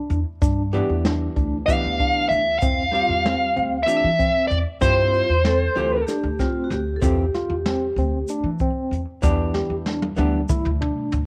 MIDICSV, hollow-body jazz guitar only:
0, 0, Header, 1, 2, 480
1, 0, Start_track
1, 0, Tempo, 629591
1, 320, Time_signature, 7, 3, 24, 8
1, 8585, End_track
2, 0, Start_track
2, 0, Title_t, "Hollow-body jazz guitar"
2, 0, Program_c, 0, 26
2, 557, Note_on_c, 0, 52, 78
2, 563, Note_on_c, 0, 59, 58
2, 564, Note_on_c, 0, 62, 64
2, 569, Note_on_c, 0, 67, 71
2, 1231, Note_off_c, 0, 52, 0
2, 1232, Note_off_c, 0, 59, 0
2, 1234, Note_off_c, 0, 62, 0
2, 1237, Note_off_c, 0, 67, 0
2, 1275, Note_on_c, 0, 52, 68
2, 1279, Note_on_c, 0, 59, 60
2, 1281, Note_on_c, 0, 62, 53
2, 1287, Note_on_c, 0, 67, 74
2, 1950, Note_off_c, 0, 52, 0
2, 1951, Note_off_c, 0, 62, 0
2, 1952, Note_off_c, 0, 59, 0
2, 1956, Note_off_c, 0, 67, 0
2, 2222, Note_on_c, 0, 55, 64
2, 2230, Note_on_c, 0, 60, 50
2, 2232, Note_on_c, 0, 65, 60
2, 2235, Note_on_c, 0, 67, 59
2, 2904, Note_off_c, 0, 55, 0
2, 2905, Note_off_c, 0, 60, 0
2, 2908, Note_off_c, 0, 67, 0
2, 2909, Note_off_c, 0, 65, 0
2, 2941, Note_on_c, 0, 52, 58
2, 2943, Note_on_c, 0, 60, 55
2, 2947, Note_on_c, 0, 65, 62
2, 2950, Note_on_c, 0, 67, 71
2, 3118, Note_off_c, 0, 60, 0
2, 3120, Note_off_c, 0, 52, 0
2, 3121, Note_off_c, 0, 65, 0
2, 3123, Note_off_c, 0, 67, 0
2, 3667, Note_on_c, 0, 60, 63
2, 3671, Note_on_c, 0, 64, 55
2, 3674, Note_on_c, 0, 65, 63
2, 3679, Note_on_c, 0, 67, 71
2, 4010, Note_off_c, 0, 60, 0
2, 4010, Note_off_c, 0, 64, 0
2, 4014, Note_off_c, 0, 65, 0
2, 4014, Note_off_c, 0, 67, 0
2, 4386, Note_on_c, 0, 52, 71
2, 4388, Note_on_c, 0, 60, 64
2, 4394, Note_on_c, 0, 67, 86
2, 4396, Note_on_c, 0, 65, 57
2, 4561, Note_off_c, 0, 52, 0
2, 4563, Note_off_c, 0, 60, 0
2, 4564, Note_off_c, 0, 65, 0
2, 4565, Note_off_c, 0, 67, 0
2, 5349, Note_on_c, 0, 52, 70
2, 5350, Note_on_c, 0, 60, 65
2, 5356, Note_on_c, 0, 65, 54
2, 5357, Note_on_c, 0, 67, 77
2, 5522, Note_off_c, 0, 52, 0
2, 5524, Note_off_c, 0, 60, 0
2, 5525, Note_off_c, 0, 65, 0
2, 5527, Note_off_c, 0, 67, 0
2, 7030, Note_on_c, 0, 52, 89
2, 7033, Note_on_c, 0, 59, 60
2, 7037, Note_on_c, 0, 62, 76
2, 7040, Note_on_c, 0, 67, 83
2, 7707, Note_off_c, 0, 59, 0
2, 7708, Note_off_c, 0, 52, 0
2, 7711, Note_off_c, 0, 62, 0
2, 7712, Note_off_c, 0, 67, 0
2, 7750, Note_on_c, 0, 52, 73
2, 7756, Note_on_c, 0, 59, 67
2, 7759, Note_on_c, 0, 62, 60
2, 7766, Note_on_c, 0, 67, 66
2, 7923, Note_off_c, 0, 52, 0
2, 7926, Note_off_c, 0, 59, 0
2, 7929, Note_off_c, 0, 62, 0
2, 7930, Note_off_c, 0, 67, 0
2, 8585, End_track
0, 0, End_of_file